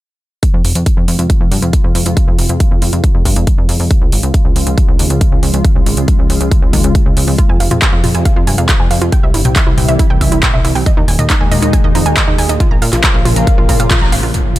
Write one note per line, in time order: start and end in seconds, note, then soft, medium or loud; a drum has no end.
0.43 3.87 C3 medium
0.43 7.34 F3 medium
0.43 9.08 G#3 medium
0.43 3.87 F4 medium
0.43 kick loud
0.43 closed hi-hat medium
0.54 0.62 F2 medium
0.65 0.73 F1 loud
0.65 open hi-hat loud
0.75 0.84 F2 medium
0.75 closed hi-hat medium
0.86 kick loud
0.86 closed hi-hat medium
0.97 1.06 F2 medium
1.08 1.17 F2 medium
1.08 open hi-hat loud
1.19 1.28 F2 medium
1.19 closed hi-hat medium
1.30 kick loud
1.30 closed hi-hat medium
1.41 1.49 F2 medium
1.52 1.60 G2 loud
1.52 open hi-hat loud
1.62 1.71 F2 medium
1.62 closed hi-hat medium
1.73 kick loud
1.73 closed hi-hat medium
1.84 1.93 F2 medium
1.95 2.04 F2 loud
1.95 open hi-hat loud
2.06 2.15 F2 medium
2.06 closed hi-hat medium
2.17 kick loud
2.17 closed hi-hat medium
2.28 2.36 F2 medium
2.39 2.47 F1 loud
2.39 open hi-hat loud
2.49 2.58 F2 medium
2.49 closed hi-hat medium
2.60 kick loud
2.60 closed hi-hat medium
2.71 2.80 F2 medium
2.82 2.91 F2 medium
2.82 open hi-hat loud
2.93 3.02 F2 medium
2.93 closed hi-hat medium
3.04 kick loud
3.04 closed hi-hat medium
3.15 3.23 F2 medium
3.25 3.34 G2 loud
3.25 kick medium
3.25 open hi-hat loud
3.36 3.45 F2 medium
3.36 closed hi-hat medium
3.47 kick loud
3.47 closed hi-hat medium
3.58 3.67 F2 medium
3.69 3.78 F2 medium
3.69 open hi-hat loud
3.80 3.89 F2 medium
3.80 open hi-hat medium
3.91 7.35 C#3 medium
3.91 9.08 F4 medium
3.91 kick loud
3.91 closed hi-hat medium
4.02 4.10 C#2 medium
4.12 4.21 G#1 loud
4.12 open hi-hat loud
4.23 4.32 C#2 medium
4.23 closed hi-hat medium
4.34 kick loud
4.34 closed hi-hat medium
4.45 4.54 C#2 medium
4.56 4.65 C#2 medium
4.56 open hi-hat loud
4.67 4.75 C#2 medium
4.67 closed hi-hat medium
4.78 kick loud
4.78 closed hi-hat medium
4.88 4.97 C#2 medium
4.99 5.08 D#2 loud
4.99 open hi-hat loud
5.10 5.19 C#2 medium
5.10 closed hi-hat medium
5.21 kick loud
5.21 closed hi-hat medium
5.32 5.41 C#2 medium
5.43 5.52 C#2 loud
5.43 open hi-hat loud
5.54 5.62 C#2 medium
5.54 closed hi-hat medium
5.65 kick loud
5.65 closed hi-hat medium
5.75 5.84 C#2 medium
5.86 5.95 G#1 loud
5.86 open hi-hat loud
5.97 6.06 C#2 medium
5.97 closed hi-hat medium
6.08 kick loud
6.08 closed hi-hat medium
6.19 6.28 C#2 medium
6.30 6.38 C#2 loud
6.30 open hi-hat loud
6.41 6.49 C#2 medium
6.41 closed hi-hat medium
6.51 kick loud
6.51 closed hi-hat medium
6.62 6.71 C#2 medium
6.73 6.82 D#2 loud
6.73 kick medium
6.73 open hi-hat loud
6.84 6.93 C#2 medium
6.84 closed hi-hat medium
6.95 kick loud
6.95 closed hi-hat medium
7.06 7.15 C#2 medium
7.17 7.25 C#2 loud
7.17 open hi-hat loud
7.28 7.36 C#2 medium
7.28 open hi-hat medium
7.38 10.83 C3 medium
7.38 9.11 F3 medium
7.38 7.45 F4 medium
7.38 kick loud
7.38 closed hi-hat medium
7.49 7.58 F2 medium
7.49 7.59 G#5 medium
7.60 7.69 F1 loud
7.60 7.67 F5 medium
7.60 open hi-hat loud
7.71 7.80 F2 medium
7.71 7.78 F4 medium
7.71 closed hi-hat medium
7.71 mid tom medium
7.82 7.92 G#5 medium
7.82 kick loud
7.82 clap loud
7.82 closed hi-hat medium
7.93 8.01 F2 medium
7.93 8.00 F5 medium
8.04 8.12 F2 loud
8.04 8.10 F4 medium
8.04 open hi-hat loud
8.04 mid tom medium
8.15 8.23 F2 medium
8.15 8.25 G#5 medium
8.15 closed hi-hat medium
8.25 8.32 F5 medium
8.25 kick loud
8.25 closed hi-hat medium
8.36 8.45 F2 medium
8.36 8.43 F4 medium
8.47 8.56 G2 loud
8.47 8.57 G#5 medium
8.47 open hi-hat loud
8.58 8.67 F2 medium
8.58 8.65 F5 medium
8.58 closed hi-hat medium
8.69 8.76 F4 medium
8.69 kick loud
8.69 clap loud
8.69 closed hi-hat medium
8.80 8.88 F2 medium
8.80 8.90 G#5 medium
8.91 8.99 F2 medium
8.91 8.97 F5 medium
8.91 open hi-hat loud
9.02 9.10 F2 medium
9.02 9.08 F4 medium
9.02 closed hi-hat medium
9.12 10.85 E3 medium
9.12 10.85 G3 medium
9.12 10.85 E4 medium
9.12 9.22 G5 medium
9.12 kick loud
9.12 closed hi-hat medium
9.23 9.32 C2 medium
9.23 9.30 E5 medium
9.34 9.43 G1 loud
9.34 9.41 E4 medium
9.34 open hi-hat loud
9.45 9.54 C2 medium
9.45 9.55 G5 medium
9.45 closed hi-hat medium
9.45 mid tom medium
9.56 9.63 E5 medium
9.56 kick loud
9.56 clap loud
9.56 closed hi-hat medium
9.67 9.76 C2 medium
9.67 9.73 E4 medium
9.78 9.86 C2 loud
9.78 9.88 G5 medium
9.78 open hi-hat loud
9.78 mid tom medium
9.88 9.97 C2 medium
9.88 9.95 E5 medium
9.88 closed hi-hat medium
9.99 10.06 E4 medium
9.99 kick loud
9.99 closed hi-hat medium
10.10 10.19 C2 medium
10.10 10.20 G5 medium
10.21 10.30 C#2 loud
10.21 10.28 E5 medium
10.21 kick medium
10.21 open hi-hat loud
10.32 10.41 C2 medium
10.32 10.39 E4 medium
10.32 closed hi-hat medium
10.43 10.53 G5 medium
10.43 kick loud
10.43 clap loud
10.43 closed hi-hat medium
10.43 mid tom medium
10.54 10.62 C2 medium
10.54 10.60 E5 medium
10.54 mid tom medium
10.65 10.73 C2 loud
10.65 10.71 E4 medium
10.65 open hi-hat loud
10.75 10.84 C2 medium
10.75 10.85 G5 medium
10.75 open hi-hat medium
10.86 12.58 A#2 medium
10.86 12.58 D#3 medium
10.86 12.58 G#3 medium
10.86 12.58 D#4 medium
10.86 10.93 D#5 medium
10.86 kick loud
10.86 closed hi-hat medium
10.97 11.06 D#2 medium
10.97 11.04 D#4 medium
11.08 11.17 D#1 loud
11.08 11.18 G#5 medium
11.08 open hi-hat loud
11.19 11.28 D#2 medium
11.19 11.26 D#5 medium
11.19 closed hi-hat medium
11.19 mid tom medium
11.30 11.36 D#4 medium
11.30 kick loud
11.30 clap loud
11.30 closed hi-hat medium
11.41 11.49 D#2 medium
11.41 11.51 G#5 medium
11.51 11.60 D#2 loud
11.51 11.58 D#5 medium
11.51 open hi-hat loud
11.51 mid tom medium
11.62 11.71 D#2 medium
11.62 11.69 D#4 medium
11.62 closed hi-hat medium
11.73 11.83 G#5 medium
11.73 kick loud
11.73 closed hi-hat medium
11.84 11.93 D#2 medium
11.84 11.91 D#5 medium
11.95 12.04 F2 loud
11.95 12.02 D#4 medium
11.95 open hi-hat loud
12.06 12.15 D#2 medium
12.06 12.16 G#5 medium
12.06 closed hi-hat medium
12.17 12.23 D#5 medium
12.17 kick loud
12.17 clap loud
12.17 closed hi-hat medium
12.28 12.36 D#2 medium
12.28 12.34 D#4 medium
12.38 12.47 D#2 loud
12.38 12.48 G#5 medium
12.38 open hi-hat loud
12.49 12.58 D#2 medium
12.49 12.56 D#5 medium
12.49 closed hi-hat medium
12.60 14.32 C#3 medium
12.60 14.32 F3 medium
12.60 14.32 A#3 medium
12.60 12.67 F4 medium
12.60 14.32 F4 medium
12.60 kick loud
12.60 closed hi-hat medium
12.71 12.80 A#1 medium
12.71 12.81 A#5 medium
12.82 12.91 A#2 loud
12.82 12.89 F5 medium
12.82 open hi-hat loud
12.93 13.01 A#1 medium
12.93 12.99 F4 medium
12.93 clap soft
12.93 closed hi-hat medium
12.93 mid tom medium
13.04 13.14 A#5 medium
13.04 kick loud
13.04 clap loud
13.04 closed hi-hat medium
13.14 13.23 A#1 medium
13.14 13.21 F5 medium
13.25 13.34 A#1 medium
13.25 13.32 F4 medium
13.25 open hi-hat loud
13.25 mid tom medium
13.36 13.45 A#1 medium
13.36 13.46 A#5 medium
13.36 closed hi-hat medium
13.47 13.54 F5 medium
13.47 kick loud
13.47 closed hi-hat medium
13.58 13.67 A#1 medium
13.58 13.65 F4 medium
13.69 13.78 A#2 loud
13.69 13.79 A#5 medium
13.69 kick medium
13.69 open hi-hat loud
13.80 13.88 A#2 medium
13.80 13.86 F5 medium
13.80 closed hi-hat medium
13.91 13.97 F4 medium
13.91 kick loud
13.91 clap loud
13.91 closed hi-hat medium
13.91 mid tom medium
14.01 14.10 A#1 medium
14.01 14.12 A#5 medium
14.01 mid tom medium
14.12 14.21 G#1 loud
14.12 14.19 F5 medium
14.12 open hi-hat loud
14.23 14.32 A#1 loud
14.23 14.30 F4 medium
14.23 open hi-hat medium
14.34 14.59 C3 medium
14.34 14.59 F3 medium
14.34 14.59 G#3 medium
14.34 14.59 F4 medium
14.34 closed hi-hat medium
14.34 impact medium
14.56 closed hi-hat medium